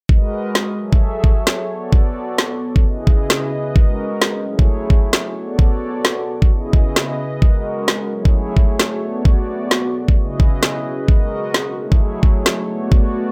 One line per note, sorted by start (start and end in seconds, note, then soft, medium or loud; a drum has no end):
0.09 0.77 G#3 medium
0.09 0.77 F#4 medium
0.09 0.77 A#4 medium
0.09 0.77 B4 medium
0.09 0.77 D#5 medium
0.09 kick loud
0.55 snare loud
0.78 1.69 F#3 medium
0.78 3.23 F#4 medium
0.78 1.69 G#4 medium
0.78 1.69 A4 medium
0.78 2.82 C#5 medium
0.78 1.69 E5 medium
0.93 kick loud
1.04 3.23 C#6 medium
1.11 2.15 G#5 medium
1.24 kick loud
1.47 snare loud
1.70 2.83 B3 medium
1.70 3.23 B3 medium
1.70 2.83 F#4 medium
1.70 2.83 A4 medium
1.70 2.83 D5 medium
1.93 kick loud
2.38 snare loud
2.76 kick loud
2.84 3.75 C#3 medium
2.84 4.05 C#4 medium
2.84 3.75 E4 medium
2.84 3.75 G#4 medium
2.84 4.43 B4 medium
2.84 4.43 D#5 medium
3.01 4.84 D#5 medium
3.07 4.84 G#4 medium
3.07 kick loud
3.30 snare loud
3.76 4.44 G#3 medium
3.76 4.44 F#4 medium
3.76 4.44 A#4 medium
3.76 kick loud
4.22 snare loud
4.44 5.35 F#3 medium
4.44 5.35 A3 medium
4.44 5.35 E4 medium
4.44 6.90 F#4 medium
4.44 5.35 G#4 medium
4.44 5.35 C#5 medium
4.59 6.90 C#6 medium
4.59 kick loud
4.70 5.82 G#5 medium
4.90 kick loud
5.13 snare loud
5.36 6.49 B3 medium
5.36 6.90 B3 medium
5.36 6.49 F#4 medium
5.36 6.49 A4 medium
5.36 6.49 C#5 medium
5.36 6.49 D5 medium
5.59 kick loud
6.05 snare loud
6.42 kick loud
6.50 7.41 C#3 medium
6.50 7.71 C#4 medium
6.50 7.41 E4 medium
6.50 7.41 G#4 medium
6.50 8.09 B4 medium
6.50 8.09 D#5 medium
6.60 8.50 D#5 medium
6.73 kick loud
6.81 8.50 G#4 medium
6.96 snare loud
7.42 8.10 G#3 medium
7.42 8.10 F#4 medium
7.42 8.10 A#4 medium
7.42 kick loud
7.88 snare loud
8.11 9.02 F#3 medium
8.11 10.15 A3 medium
8.11 9.02 E4 medium
8.11 10.56 F#4 medium
8.11 9.01 G#4 medium
8.11 10.15 C#5 medium
8.21 10.56 C#6 medium
8.25 kick loud
8.57 kick loud
8.79 snare loud
9.02 10.56 B3 medium
9.02 10.16 B3 medium
9.02 10.16 F#4 medium
9.02 10.16 D5 medium
9.25 kick loud
9.71 snare loud
10.08 kick loud
10.17 11.08 C#3 medium
10.17 11.37 C#4 medium
10.17 11.08 E4 medium
10.17 11.08 G#4 medium
10.17 11.76 B4 medium
10.17 11.07 D#5 medium
10.32 12.16 G#4 medium
10.40 kick medium
10.59 12.16 D#5 medium
10.59 snare loud
11.08 11.77 G#3 medium
11.08 11.77 F#4 medium
11.08 11.77 A#4 medium
11.08 11.77 D#5 medium
11.08 kick loud
11.54 snare loud
11.77 12.68 F#3 medium
11.77 13.32 A3 medium
11.77 12.68 E4 medium
11.77 13.32 F#4 medium
11.77 12.68 G#4 medium
11.77 13.32 C#5 medium
11.92 13.32 C#6 medium
11.92 kick loud
12.23 kick loud
12.46 snare loud
12.69 13.32 B3 medium
12.69 13.32 F#4 medium
12.69 13.32 D5 medium
12.92 kick loud